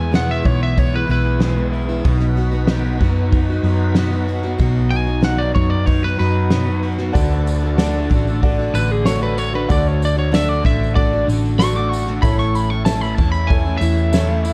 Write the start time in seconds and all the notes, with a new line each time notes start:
Already playing: E2 E3 G#3 B3 E4 G#4 G#5
0.00 E3 G#3
0.12 E2 B2 E3 G#3 B3 E4 F#5, snare, open hi-hat
0.31 E5
0.44 B1 E3 G#3 B3 C#5, kick, open hi-hat
0.48 E4
0.63 E5
0.77 B3 C#5, kick, open hi-hat
0.93 E3 G#3 B3 E4 B4
1.07 B1 E3 G#3 B3 E4, open hi-hat
1.11 B4
1.40 E2 B2 E3 G#3 B3 E4, snare, open hi-hat
1.55 E3 G#3 B3 E4
1.72 E4, open hi-hat
1.89 E3 G#3 B3 E4
2.04 B1 B2 F#3 B3 D#4 F#4 B4, kick, open hi-hat
2.20 snare
2.35 F#3 B3 D#4 F#4, open hi-hat
2.52 B3 D#4 F#4
2.67 B2 F#3 B3 D#4 F#4, snare, open hi-hat
3.00 F#2 F#3 B3 D#4, kick, open hi-hat
3.04 F#4
3.31 D#4, kick, open hi-hat
3.50 B3 D#4 F#4
3.63 F#2 F#3 B3, open hi-hat
3.68 D#4 F#4
3.95 B2 F#3 B3 D#4 F#4, snare, open hi-hat
4.13 B3 D#4 F#4
4.27 F#4, open hi-hat
4.43 D#4 F#4, snare
4.47 B3
4.58 B1 B2 F#3 B3 D#4 F#4, kick, open hi-hat
4.90 F#3 B3 D#4 G#5, open hi-hat
4.95 F#4
5.06 B3 D#4 F#4
5.21 B2 F#3 B3 D#4 F#4 F#5, snare, open hi-hat
5.38 D5
5.53 F#2 F#3 B3 D#4 F#4 C#5, kick, open hi-hat
5.70 D5
5.86 D#4 C#5, kick, open hi-hat
6.02 B3 D#4 F#4 B4
6.17 F#2 F#3 B3 D#4 F#4 B4, open hi-hat
6.50 B2 F#3 B3 D#4 F#4, snare, open hi-hat
6.66 D#4 F#4
6.70 B3
6.83 F#4, open hi-hat
6.98 B3 D#4 F#4, snare
7.13 D2 D3 A3 D4 F#4 A4 D5, kick, open hi-hat, tambourine
7.17 A3 D4 F#4
7.32 tambourine
7.46 open hi-hat, tambourine
7.63 A3 D4 F#4
7.77 D3 A3 D4 F#4 A4 D5, snare, open hi-hat, tambourine
7.82 F#4
7.94 tambourine
8.10 A1 D3 A3, kick, open hi-hat, tambourine
8.14 D4 F#4
8.27 D4 F#4, tambourine
8.31 A3
8.42 D4 F#4 A4 D5, kick, open hi-hat
8.59 A3 D4 F#4
8.74 A1 D3 A3 D4 F#4 B4, open hi-hat, tambourine
8.90 G#4, tambourine
9.05 D3 A3 D4 F#4 A4 C#5, snare, open hi-hat, tambourine
9.21 A3 D4 F#4 B4
9.36 F#4 C#5, open hi-hat, tambourine
9.53 A3 D4 F#4 B4
9.68 D2 D3 A3 D4 F#4 A4 D5, kick, open hi-hat, tambourine
9.85 C#5, tambourine
10.02 D5, open hi-hat, tambourine
10.16 A3 D4 F#4 C#5
10.31 D3 A3 D4 F#4 A4 D5 E5, snare, open hi-hat, tambourine
10.49 D5, tambourine
10.63 A1 D3 A3 D4 F#4 E5, kick, open hi-hat, tambourine
10.83 tambourine
10.94 D4 F#4 A4 D5, kick, open hi-hat
11.13 A3 D4 F#4
11.28 A1 D3 A3 D4, open hi-hat, tambourine
11.33 F#4
11.46 tambourine
11.59 D3 A3 D4 F#4 A4 D5 C#6, snare, open hi-hat, tambourine
11.76 A3 D4 F#4 D6
11.89 F#4 C#6, open hi-hat
11.93 tambourine
12.07 A3 D4 F#4, snare
12.22 A1 A2 E3 A3 C#4 E4 A4 C#5 B5, kick, open hi-hat, tambourine
12.39 C#6, snare, tambourine
12.54 B5, open hi-hat, tambourine
12.70 C#4 E4 C#6
12.75 A3
12.85 A2 E3 A3 C#4 E4 A4 C#5 A5, snare, open hi-hat, tambourine
13.01 B5, tambourine
13.15 E2 E3 A5, kick, open hi-hat, tambourine
13.19 A3 C#4 E4
13.32 B5, tambourine
13.47 C#4 E4 A4 C#5 G#5, kick, open hi-hat
13.65 A3 C#4 E4
13.77 E2 E3 A3 E5, tambourine
13.82 C#4 E4, open hi-hat
13.98 tambourine
14.12 A2 E3 A3 C#4 E4 A4 C#5, snare, open hi-hat, tambourine
14.28 A3 C#4 E4
14.45 E4, open hi-hat, tambourine